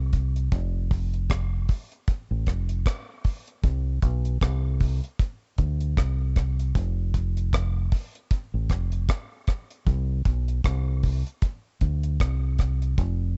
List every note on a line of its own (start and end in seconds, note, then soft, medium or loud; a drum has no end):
0.00 0.48 C2 medium
0.13 kick medium
0.13 closed hi-hat medium
0.36 closed hi-hat soft
0.52 1.65 F1 loud
0.52 kick loud
0.52 closed hi-hat medium
0.91 kick medium
0.91 open hi-hat medium
1.14 closed hi-hat medium
1.30 kick medium
1.30 cross-stick loud
1.30 closed hi-hat medium
1.69 kick medium
1.69 open hi-hat medium
1.92 closed hi-hat soft
2.08 kick loud
2.08 closed hi-hat medium
2.31 2.46 A1 medium
2.46 2.83 F1 medium
2.46 kick medium
2.46 cross-stick medium
2.46 closed hi-hat medium
2.69 closed hi-hat medium
2.86 kick loud
2.86 cross-stick loud
2.86 closed hi-hat loud
3.24 kick medium
3.24 open hi-hat medium
3.48 closed hi-hat medium
3.63 4.00 C2 medium
3.63 kick loud
3.63 closed hi-hat medium
4.02 4.39 B1 medium
4.02 kick medium
4.02 closed hi-hat medium
4.25 closed hi-hat medium
4.41 4.99 C2 loud
4.41 kick medium
4.41 cross-stick loud
4.41 closed hi-hat medium
4.80 kick medium
4.80 open hi-hat medium
5.04 closed hi-hat soft
5.19 kick loud
5.19 closed hi-hat medium
5.58 5.94 D2 medium
5.58 kick medium
5.58 closed hi-hat medium
5.80 closed hi-hat medium
5.97 6.71 C2 medium
5.97 kick loud
5.97 cross-stick loud
5.97 closed hi-hat loud
6.36 kick medium
6.36 cross-stick medium
6.36 closed hi-hat medium
6.59 closed hi-hat medium
6.75 7.88 F1 loud
6.75 kick loud
6.75 closed hi-hat medium
7.14 kick medium
7.14 closed hi-hat medium
7.37 closed hi-hat medium
7.53 kick loud
7.53 cross-stick loud
7.53 closed hi-hat medium
7.92 kick medium
7.92 open hi-hat medium
8.15 closed hi-hat soft
8.31 kick loud
8.31 closed hi-hat medium
8.54 8.69 A1 medium
8.69 9.06 F1 medium
8.69 kick medium
8.69 cross-stick medium
8.69 closed hi-hat medium
8.92 closed hi-hat medium
9.09 kick loud
9.09 cross-stick loud
9.09 closed hi-hat loud
9.47 kick medium
9.47 cross-stick medium
9.47 closed hi-hat medium
9.71 closed hi-hat medium
9.87 10.23 C2 loud
9.87 kick loud
9.87 closed hi-hat medium
10.25 10.61 B1 medium
10.25 kick medium
10.25 closed hi-hat medium
10.48 closed hi-hat medium
10.64 11.22 C2 loud
10.64 kick loud
10.64 cross-stick loud
10.64 closed hi-hat medium
11.03 kick medium
11.03 open hi-hat medium
11.27 closed hi-hat soft
11.42 kick loud
11.42 closed hi-hat medium
11.81 12.17 D2 medium
11.81 kick medium
11.81 closed hi-hat medium
12.03 closed hi-hat medium
12.20 12.94 C2 medium
12.20 kick loud
12.20 cross-stick loud
12.20 closed hi-hat loud
12.59 kick medium
12.59 cross-stick medium
12.59 closed hi-hat medium
12.82 closed hi-hat medium
12.98 13.37 F1 loud
12.98 kick loud
12.98 closed hi-hat medium